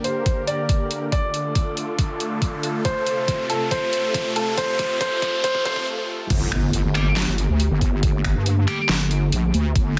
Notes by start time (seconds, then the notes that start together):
Already playing: D3 A#3 G4 A#4, riser
0.04 C5, closed hi-hat
0.26 kick, closed hi-hat
0.47 D5, closed hi-hat
0.69 kick, closed hi-hat
0.91 closed hi-hat
1.12 A3 F4 A4 D5, kick, closed hi-hat
1.34 closed hi-hat
1.55 kick, closed hi-hat
1.77 closed hi-hat
1.99 kick, closed hi-hat
2.20 closed hi-hat
2.42 kick, closed hi-hat
2.63 closed hi-hat
2.85 C3 C5, kick, closed hi-hat
3.06 closed hi-hat
3.28 kick, closed hi-hat
3.50 A4, closed hi-hat
3.71 C5, kick, closed hi-hat
3.93 closed hi-hat
4.14 kick, closed hi-hat
4.36 A4, closed hi-hat
4.58 C5, kick, closed hi-hat
4.79 kick, closed hi-hat
5.01 C5, kick, closed hi-hat
5.22 kick, closed hi-hat
5.44 C5, kick, closed hi-hat
5.55 kick
5.65 C5, kick, closed hi-hat
5.76 kick
6.30 G1 D3 A3 A#3 G4, kick, closed hi-hat, crash, impact
6.52 finger snap, closed hi-hat
6.73 G1, closed hi-hat
6.84 G1
6.95 G3 D4 G4, finger snap, closed hi-hat
7.17 snare, clap, closed hi-hat
7.27 G1
7.38 closed hi-hat
7.49 D2
7.60 closed hi-hat
7.71 G1
7.81 kick, closed hi-hat
8.03 kick, closed hi-hat
8.24 finger snap, kick, closed hi-hat
8.35 G2
8.46 closed hi-hat
8.68 G3 D4 G4, finger snap, closed hi-hat
8.89 G1, snare, clap, closed hi-hat
9.11 closed hi-hat
9.32 A#1, closed hi-hat
9.54 D2, closed hi-hat
9.76 G1 D4, kick, closed hi-hat